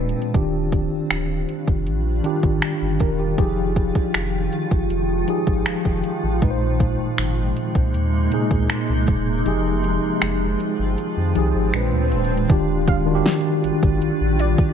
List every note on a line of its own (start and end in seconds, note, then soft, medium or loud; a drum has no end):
0.00 0.14 D1 medium
0.00 0.25 A#2 medium
0.00 0.26 G#3 medium
0.00 0.30 C4 medium
0.00 0.26 D4 medium
0.00 0.27 B4 medium
0.09 closed hi-hat medium
0.22 closed hi-hat medium
0.33 0.87 D#1 loud
0.33 1.68 D#3 medium
0.33 3.35 D#3 medium
0.33 3.35 G3 medium
0.33 1.69 D4 medium
0.33 3.35 D4 medium
0.33 6.38 F4 medium
0.33 1.69 F4 medium
0.33 1.70 G4 medium
0.33 kick loud
0.33 closed hi-hat medium
0.72 kick medium
0.72 closed hi-hat medium
0.92 0.99 D1 soft
1.10 1.45 D1 medium
1.10 finger snap loud
1.10 closed hi-hat medium
1.49 closed hi-hat medium
1.68 1.88 F1 medium
1.68 kick medium
1.86 2.21 A#1 loud
1.86 closed hi-hat medium
2.23 3.25 D#3 medium
2.23 3.25 D4 medium
2.23 3.26 F4 medium
2.23 2.61 G4 medium
2.23 closed hi-hat medium
2.43 2.60 G#1 medium
2.43 kick medium
2.62 2.98 G4 medium
2.62 finger snap loud
2.62 closed hi-hat medium
2.82 2.99 G1 medium
3.00 3.35 E1 loud
3.00 3.18 A#4 medium
3.00 kick medium
3.00 closed hi-hat medium
3.20 3.38 G4 medium
3.37 3.91 F1 loud
3.37 6.39 D#3 medium
3.37 4.72 F3 medium
3.37 6.39 F3 medium
3.37 11.69 G#3 medium
3.37 4.73 D#4 medium
3.37 4.73 G4 medium
3.37 4.74 G#4 medium
3.37 kick loud
3.37 closed hi-hat medium
3.76 kick medium
3.76 closed hi-hat medium
3.95 4.03 F1 soft
3.95 kick medium
4.14 4.49 F1 medium
4.14 finger snap loud
4.14 closed hi-hat medium
4.52 closed hi-hat medium
4.71 4.89 G1 medium
4.71 kick loud
4.90 5.25 F1 medium
4.90 closed hi-hat medium
5.27 6.29 F3 medium
5.27 6.29 D#4 medium
5.27 6.29 G4 medium
5.27 6.30 G#4 medium
5.27 closed hi-hat medium
5.47 5.64 G#1 medium
5.47 kick medium
5.66 5.74 F1 soft
5.66 finger snap loud
5.66 closed hi-hat medium
5.85 6.02 F1 medium
5.85 kick medium
6.04 closed hi-hat medium
6.23 6.40 A1 medium
6.41 6.95 A#1 loud
6.41 7.76 A#2 medium
6.41 9.43 C3 medium
6.41 7.77 G#3 medium
6.41 9.43 A#3 medium
6.41 9.43 D#4 medium
6.41 7.77 D#4 medium
6.41 6.50 B4 medium
6.41 kick loud
6.41 closed hi-hat medium
6.51 7.81 C5 medium
6.80 kick medium
6.80 closed hi-hat medium
6.99 7.07 G#1 soft
7.18 7.52 G#1 medium
7.18 finger snap loud
7.18 closed hi-hat medium
7.56 closed hi-hat medium
7.75 7.92 C2 medium
7.75 kick medium
7.94 8.28 D#2 loud
7.94 closed hi-hat medium
8.31 9.32 A#2 medium
8.31 9.33 G#3 medium
8.31 9.33 D#4 medium
8.31 9.34 G#4 medium
8.31 closed hi-hat medium
8.51 8.68 D2 medium
8.51 kick medium
8.69 finger snap loud
8.69 closed hi-hat medium
8.89 9.06 C2 medium
9.07 9.42 E1 medium
9.07 kick loud
9.07 closed hi-hat medium
9.45 9.99 F1 loud
9.45 11.71 D#3 medium
9.45 10.80 F3 medium
9.45 11.71 F3 medium
9.45 10.80 D#4 medium
9.45 11.71 F4 medium
9.45 10.81 G4 medium
9.45 10.81 G#4 medium
9.45 closed hi-hat medium
9.45 swell medium
9.84 closed hi-hat medium
10.03 10.11 F1 soft
10.22 10.56 F1 medium
10.22 finger snap loud
10.22 closed hi-hat medium
10.60 closed hi-hat medium
10.79 10.96 G1 medium
10.98 closed hi-hat medium
11.17 11.34 F2 medium
11.35 11.53 C2 medium
11.35 11.73 F3 medium
11.35 11.74 D#4 medium
11.35 11.74 G4 medium
11.35 11.75 G#4 medium
11.35 closed hi-hat medium
11.55 11.72 G#1 medium
11.73 11.91 A#1 loud
11.73 12.40 A#2 medium
11.73 12.41 G#3 medium
11.73 12.41 D4 medium
11.73 12.42 B4 medium
11.73 finger snap loud
11.73 closed hi-hat medium
11.93 12.13 D2 medium
12.12 12.46 D1 medium
12.12 closed hi-hat medium
12.24 closed hi-hat medium
12.37 closed hi-hat medium
12.49 13.22 D#1 loud
12.49 13.00 D#3 medium
12.49 14.73 D#3 medium
12.49 14.73 G3 medium
12.49 14.73 D4 medium
12.49 13.00 D4 medium
12.49 14.73 F4 medium
12.49 13.01 F4 medium
12.49 13.01 G4 medium
12.49 kick loud
12.49 closed hi-hat medium
12.88 14.02 F5 medium
12.88 kick medium
12.88 closed hi-hat medium
13.06 14.24 D#3 medium
13.06 14.24 D4 medium
13.06 14.25 F4 medium
13.06 13.14 F#4 medium
13.15 14.28 G4 loud
13.26 snare loud
13.26 closed hi-hat medium
13.64 13.71 G1 soft
13.64 closed hi-hat medium
13.83 14.00 G1 medium
13.83 kick loud
14.02 14.09 A#1 medium
14.02 closed hi-hat medium
14.21 14.55 A#1 loud
14.39 14.73 D5 medium
14.39 closed hi-hat medium
14.58 kick loud